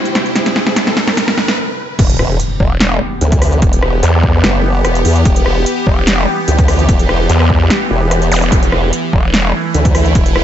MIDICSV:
0, 0, Header, 1, 9, 480
1, 0, Start_track
1, 0, Key_signature, 1, "minor"
1, 0, Tempo, 408163
1, 420, Time_signature, 4, 2, 24, 8
1, 12276, End_track
2, 0, Start_track
2, 0, Title_t, "String section"
2, 0, Program_c, 0, 48
2, 0, Note_on_c, 0, 64, 81
2, 0, Note_on_c, 0, 72, 83
2, 0, Note_on_c, 0, 79, 76
2, 1859, Note_off_c, 0, 64, 0
2, 1860, Note_off_c, 0, 79, 0
2, 1861, Note_off_c, 0, 72, 0
2, 12276, End_track
3, 0, Start_track
3, 0, Title_t, "Ambient pad"
3, 0, Program_c, 1, 92
3, 0, Note_on_c, 1, 48, 86
3, 0, Note_on_c, 1, 55, 79
3, 0, Note_on_c, 1, 64, 95
3, 1827, Note_off_c, 1, 48, 0
3, 1827, Note_off_c, 1, 55, 0
3, 1827, Note_off_c, 1, 64, 0
3, 2340, Note_on_c, 1, 52, 86
3, 2340, Note_on_c, 1, 59, 82
3, 2340, Note_on_c, 1, 67, 98
3, 9973, Note_off_c, 1, 59, 0
3, 9998, Note_off_c, 1, 67, 0
3, 10020, Note_on_c, 1, 57, 80
3, 10020, Note_on_c, 1, 64, 94
3, 12276, Note_off_c, 1, 52, 0
3, 12276, Note_off_c, 1, 57, 0
3, 12276, Note_off_c, 1, 64, 0
3, 12276, End_track
4, 0, Start_track
4, 0, Title_t, "Wobble bass"
4, 0, Program_c, 2, 39
4, 2340, Note_on_c, 2, 28, 100
4, 2561, Note_off_c, 2, 28, 0
4, 2580, Note_on_c, 2, 28, 99
4, 2802, Note_off_c, 2, 28, 0
4, 3780, Note_on_c, 2, 38, 95
4, 4242, Note_off_c, 2, 38, 0
4, 4260, Note_on_c, 2, 28, 102
4, 4482, Note_off_c, 2, 28, 0
4, 4500, Note_on_c, 2, 28, 100
4, 4722, Note_off_c, 2, 28, 0
4, 5220, Note_on_c, 2, 30, 102
4, 5681, Note_off_c, 2, 30, 0
4, 5700, Note_on_c, 2, 28, 99
4, 5922, Note_off_c, 2, 28, 0
4, 5940, Note_on_c, 2, 40, 99
4, 6162, Note_off_c, 2, 40, 0
4, 6180, Note_on_c, 2, 28, 103
4, 6402, Note_off_c, 2, 28, 0
4, 6420, Note_on_c, 2, 28, 101
4, 6642, Note_off_c, 2, 28, 0
4, 7620, Note_on_c, 2, 38, 99
4, 8082, Note_off_c, 2, 38, 0
4, 8100, Note_on_c, 2, 28, 97
4, 8321, Note_off_c, 2, 28, 0
4, 8341, Note_on_c, 2, 28, 100
4, 8562, Note_off_c, 2, 28, 0
4, 9300, Note_on_c, 2, 28, 101
4, 9762, Note_off_c, 2, 28, 0
4, 10020, Note_on_c, 2, 28, 99
4, 10242, Note_off_c, 2, 28, 0
4, 10260, Note_on_c, 2, 28, 100
4, 10482, Note_off_c, 2, 28, 0
4, 11460, Note_on_c, 2, 38, 99
4, 11922, Note_off_c, 2, 38, 0
4, 11940, Note_on_c, 2, 28, 99
4, 12162, Note_off_c, 2, 28, 0
4, 12180, Note_on_c, 2, 28, 98
4, 12276, Note_off_c, 2, 28, 0
4, 12276, End_track
5, 0, Start_track
5, 0, Title_t, "Wobble bass"
5, 0, Program_c, 3, 39
5, 3060, Note_on_c, 3, 28, 97
5, 3522, Note_off_c, 3, 28, 0
5, 4741, Note_on_c, 3, 40, 100
5, 5202, Note_off_c, 3, 40, 0
5, 6900, Note_on_c, 3, 28, 102
5, 7362, Note_off_c, 3, 28, 0
5, 8581, Note_on_c, 3, 40, 98
5, 9042, Note_off_c, 3, 40, 0
5, 9780, Note_on_c, 3, 28, 100
5, 10002, Note_off_c, 3, 28, 0
5, 10740, Note_on_c, 3, 28, 95
5, 11202, Note_off_c, 3, 28, 0
5, 12276, End_track
6, 0, Start_track
6, 0, Title_t, "Impact"
6, 0, Program_c, 4, 103
6, 2340, Note_on_c, 4, 60, 79
6, 4260, Note_off_c, 4, 60, 0
6, 12276, End_track
7, 0, Start_track
7, 0, Title_t, "Riser"
7, 0, Program_c, 5, 103
7, 0, Note_on_c, 5, 60, 81
7, 1860, Note_off_c, 5, 60, 0
7, 12276, End_track
8, 0, Start_track
8, 0, Title_t, "Zap"
8, 0, Program_c, 6, 103
8, 9780, Note_on_c, 6, 60, 58
8, 9906, Note_off_c, 6, 60, 0
8, 12276, End_track
9, 0, Start_track
9, 0, Title_t, "Drums"
9, 64, Note_on_c, 9, 42, 55
9, 179, Note_off_c, 9, 42, 0
9, 179, Note_on_c, 9, 38, 94
9, 179, Note_on_c, 9, 42, 54
9, 296, Note_off_c, 9, 38, 0
9, 296, Note_off_c, 9, 42, 0
9, 304, Note_on_c, 9, 42, 38
9, 418, Note_off_c, 9, 42, 0
9, 418, Note_on_c, 9, 38, 92
9, 418, Note_on_c, 9, 42, 78
9, 536, Note_off_c, 9, 38, 0
9, 536, Note_off_c, 9, 42, 0
9, 544, Note_on_c, 9, 38, 85
9, 544, Note_on_c, 9, 42, 53
9, 658, Note_off_c, 9, 38, 0
9, 658, Note_on_c, 9, 38, 96
9, 662, Note_off_c, 9, 42, 0
9, 776, Note_off_c, 9, 38, 0
9, 784, Note_on_c, 9, 38, 85
9, 898, Note_off_c, 9, 38, 0
9, 898, Note_on_c, 9, 38, 95
9, 898, Note_on_c, 9, 42, 80
9, 1016, Note_off_c, 9, 38, 0
9, 1016, Note_off_c, 9, 42, 0
9, 1024, Note_on_c, 9, 38, 89
9, 1138, Note_off_c, 9, 38, 0
9, 1138, Note_on_c, 9, 38, 97
9, 1255, Note_off_c, 9, 38, 0
9, 1264, Note_on_c, 9, 38, 87
9, 1379, Note_off_c, 9, 38, 0
9, 1379, Note_on_c, 9, 38, 104
9, 1379, Note_on_c, 9, 42, 84
9, 1497, Note_off_c, 9, 38, 0
9, 1497, Note_off_c, 9, 42, 0
9, 1504, Note_on_c, 9, 38, 93
9, 1619, Note_off_c, 9, 38, 0
9, 1619, Note_on_c, 9, 38, 102
9, 1736, Note_off_c, 9, 38, 0
9, 1745, Note_on_c, 9, 38, 97
9, 1862, Note_off_c, 9, 38, 0
9, 2339, Note_on_c, 9, 42, 86
9, 2339, Note_on_c, 9, 49, 105
9, 2340, Note_on_c, 9, 36, 116
9, 2457, Note_off_c, 9, 36, 0
9, 2457, Note_off_c, 9, 42, 0
9, 2457, Note_off_c, 9, 49, 0
9, 2465, Note_on_c, 9, 42, 57
9, 2579, Note_on_c, 9, 37, 66
9, 2582, Note_off_c, 9, 42, 0
9, 2696, Note_off_c, 9, 37, 0
9, 2818, Note_on_c, 9, 42, 82
9, 2936, Note_off_c, 9, 42, 0
9, 3060, Note_on_c, 9, 36, 62
9, 3177, Note_off_c, 9, 36, 0
9, 3298, Note_on_c, 9, 38, 126
9, 3298, Note_on_c, 9, 42, 86
9, 3416, Note_off_c, 9, 38, 0
9, 3416, Note_off_c, 9, 42, 0
9, 3778, Note_on_c, 9, 42, 85
9, 3896, Note_off_c, 9, 42, 0
9, 3904, Note_on_c, 9, 42, 58
9, 3905, Note_on_c, 9, 36, 100
9, 4019, Note_on_c, 9, 37, 61
9, 4019, Note_on_c, 9, 46, 101
9, 4022, Note_off_c, 9, 42, 0
9, 4023, Note_off_c, 9, 36, 0
9, 4136, Note_off_c, 9, 37, 0
9, 4136, Note_off_c, 9, 46, 0
9, 4144, Note_on_c, 9, 42, 39
9, 4258, Note_off_c, 9, 42, 0
9, 4258, Note_on_c, 9, 42, 87
9, 4260, Note_on_c, 9, 36, 121
9, 4375, Note_off_c, 9, 42, 0
9, 4377, Note_off_c, 9, 36, 0
9, 4384, Note_on_c, 9, 42, 57
9, 4499, Note_on_c, 9, 37, 64
9, 4502, Note_off_c, 9, 42, 0
9, 4616, Note_off_c, 9, 37, 0
9, 4739, Note_on_c, 9, 42, 87
9, 4856, Note_off_c, 9, 42, 0
9, 4980, Note_on_c, 9, 36, 66
9, 5098, Note_off_c, 9, 36, 0
9, 5219, Note_on_c, 9, 38, 127
9, 5219, Note_on_c, 9, 42, 85
9, 5337, Note_off_c, 9, 38, 0
9, 5337, Note_off_c, 9, 42, 0
9, 5699, Note_on_c, 9, 37, 77
9, 5699, Note_on_c, 9, 42, 85
9, 5817, Note_off_c, 9, 37, 0
9, 5817, Note_off_c, 9, 42, 0
9, 5825, Note_on_c, 9, 42, 55
9, 5939, Note_on_c, 9, 46, 95
9, 5943, Note_off_c, 9, 42, 0
9, 6057, Note_off_c, 9, 46, 0
9, 6065, Note_on_c, 9, 42, 40
9, 6179, Note_off_c, 9, 42, 0
9, 6179, Note_on_c, 9, 42, 83
9, 6180, Note_on_c, 9, 36, 123
9, 6297, Note_off_c, 9, 42, 0
9, 6298, Note_off_c, 9, 36, 0
9, 6305, Note_on_c, 9, 42, 56
9, 6419, Note_on_c, 9, 37, 61
9, 6422, Note_off_c, 9, 42, 0
9, 6536, Note_off_c, 9, 37, 0
9, 6660, Note_on_c, 9, 42, 83
9, 6777, Note_off_c, 9, 42, 0
9, 6900, Note_on_c, 9, 36, 66
9, 7018, Note_off_c, 9, 36, 0
9, 7139, Note_on_c, 9, 38, 127
9, 7139, Note_on_c, 9, 42, 82
9, 7256, Note_off_c, 9, 38, 0
9, 7256, Note_off_c, 9, 42, 0
9, 7619, Note_on_c, 9, 42, 83
9, 7736, Note_off_c, 9, 42, 0
9, 7745, Note_on_c, 9, 36, 104
9, 7745, Note_on_c, 9, 42, 56
9, 7859, Note_on_c, 9, 37, 61
9, 7859, Note_on_c, 9, 46, 90
9, 7862, Note_off_c, 9, 42, 0
9, 7863, Note_off_c, 9, 36, 0
9, 7976, Note_off_c, 9, 37, 0
9, 7976, Note_off_c, 9, 46, 0
9, 7985, Note_on_c, 9, 42, 40
9, 8099, Note_off_c, 9, 42, 0
9, 8099, Note_on_c, 9, 42, 82
9, 8100, Note_on_c, 9, 36, 120
9, 8217, Note_off_c, 9, 42, 0
9, 8218, Note_off_c, 9, 36, 0
9, 8226, Note_on_c, 9, 42, 52
9, 8339, Note_on_c, 9, 37, 64
9, 8343, Note_off_c, 9, 42, 0
9, 8457, Note_off_c, 9, 37, 0
9, 8579, Note_on_c, 9, 42, 79
9, 8697, Note_off_c, 9, 42, 0
9, 8705, Note_on_c, 9, 37, 63
9, 8820, Note_on_c, 9, 36, 66
9, 8823, Note_off_c, 9, 37, 0
9, 8937, Note_off_c, 9, 36, 0
9, 9060, Note_on_c, 9, 38, 127
9, 9060, Note_on_c, 9, 42, 81
9, 9177, Note_off_c, 9, 38, 0
9, 9177, Note_off_c, 9, 42, 0
9, 9540, Note_on_c, 9, 37, 76
9, 9540, Note_on_c, 9, 42, 81
9, 9657, Note_off_c, 9, 37, 0
9, 9657, Note_off_c, 9, 42, 0
9, 9665, Note_on_c, 9, 42, 51
9, 9780, Note_on_c, 9, 46, 95
9, 9783, Note_off_c, 9, 42, 0
9, 9897, Note_off_c, 9, 46, 0
9, 9905, Note_on_c, 9, 42, 38
9, 10020, Note_off_c, 9, 42, 0
9, 10020, Note_on_c, 9, 36, 120
9, 10020, Note_on_c, 9, 42, 78
9, 10137, Note_off_c, 9, 36, 0
9, 10137, Note_off_c, 9, 42, 0
9, 10145, Note_on_c, 9, 42, 50
9, 10259, Note_on_c, 9, 37, 65
9, 10263, Note_off_c, 9, 42, 0
9, 10377, Note_off_c, 9, 37, 0
9, 10500, Note_on_c, 9, 42, 78
9, 10617, Note_off_c, 9, 42, 0
9, 10740, Note_on_c, 9, 36, 67
9, 10857, Note_off_c, 9, 36, 0
9, 10980, Note_on_c, 9, 38, 121
9, 10980, Note_on_c, 9, 42, 79
9, 11098, Note_off_c, 9, 38, 0
9, 11098, Note_off_c, 9, 42, 0
9, 11460, Note_on_c, 9, 42, 79
9, 11577, Note_off_c, 9, 42, 0
9, 11585, Note_on_c, 9, 42, 51
9, 11586, Note_on_c, 9, 36, 97
9, 11699, Note_on_c, 9, 37, 61
9, 11699, Note_on_c, 9, 46, 92
9, 11703, Note_off_c, 9, 36, 0
9, 11703, Note_off_c, 9, 42, 0
9, 11816, Note_off_c, 9, 37, 0
9, 11816, Note_off_c, 9, 46, 0
9, 11825, Note_on_c, 9, 42, 35
9, 11939, Note_off_c, 9, 42, 0
9, 11939, Note_on_c, 9, 42, 76
9, 11940, Note_on_c, 9, 36, 116
9, 12056, Note_off_c, 9, 42, 0
9, 12058, Note_off_c, 9, 36, 0
9, 12065, Note_on_c, 9, 42, 53
9, 12179, Note_on_c, 9, 37, 69
9, 12183, Note_off_c, 9, 42, 0
9, 12276, Note_off_c, 9, 37, 0
9, 12276, End_track
0, 0, End_of_file